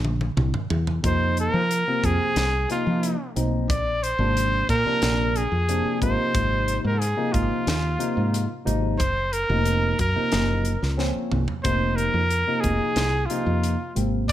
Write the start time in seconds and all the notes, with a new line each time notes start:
Already playing: A#1
0.05 high tom
0.21 high tom
0.37 C2, mid tom
0.54 mid tom
0.70 E2, floor tom
0.87 floor tom
1.03 F2 C3 F3 A#3 D#4 C5, kick, closed hi-hat
1.37 A#4, closed hi-hat
1.54 F3
1.71 closed hi-hat
1.87 C3 F3 A#3 C4
2.04 F2 G#4, kick, closed hi-hat
2.36 C2, snare, closed hi-hat
2.69 C3 F3 A#3 D#4 F4, closed hi-hat
2.87 F3
3.03 closed hi-hat
3.36 B1 F3 A#3 C4 D#4, closed hi-hat
3.69 A#1 D5, kick, closed hi-hat
4.03 C5, closed hi-hat
4.19 G#1 C3 F3 A#3 D4
4.37 closed hi-hat
4.69 A#2 A#4, kick, closed hi-hat
4.85 C3 F3 A#3 D4, muted fretless electric bass stroke
5.02 A#1, snare, closed hi-hat
5.36 G#4, closed hi-hat
5.52 F2
5.69 C3 F3 A#3 D4, closed hi-hat
5.85 muted fretless electric bass stroke
6.02 G#1 C3 F3 A#3 D#4 C5, kick, closed hi-hat
6.35 G#1, kick, closed hi-hat
6.68 closed hi-hat
6.84 G#2 A#4
7.00 G#4, closed hi-hat
7.16 C3 F3 A#3 D#4
7.33 G#1 F4, kick, closed hi-hat
7.67 D#2, snare, closed hi-hat
7.99 C3 F3 A#3 D#4, closed hi-hat
8.17 G#2
8.34 closed hi-hat
8.65 G#1 C3 F3 A#3 D#4, closed hi-hat
8.98 F#1 C5, kick, closed hi-hat
9.33 A#4, closed hi-hat
9.49 F1 C3 F3 A#3 D#4
9.65 closed hi-hat
9.99 F#2 A#4, kick, closed hi-hat
10.15 C3 F3 A#3 D#4, muted fretless electric bass stroke
10.32 F#1, snare, closed hi-hat
10.65 closed hi-hat
10.82 C#2, snare
10.97 F3 A#3 C4 C#4, snare
11.16 muted fretless electric bass stroke
11.32 C2, mid tom
11.48 floor tom
11.63 F1 C3 F3 A#3 D#4 C5, kick, closed hi-hat
11.96 A#4, closed hi-hat
12.14 F2
12.30 closed hi-hat
12.47 C3 F3 A#3 D#4
12.60 F1 G#4, kick, closed hi-hat
12.96 C2, snare, closed hi-hat
13.26 F4
13.30 C3 F3 A#3 D#4, closed hi-hat
13.46 F2
13.64 closed hi-hat
13.95 G#1 C3 F3 A#3 C4, closed hi-hat
14.29 D5, closed hi-hat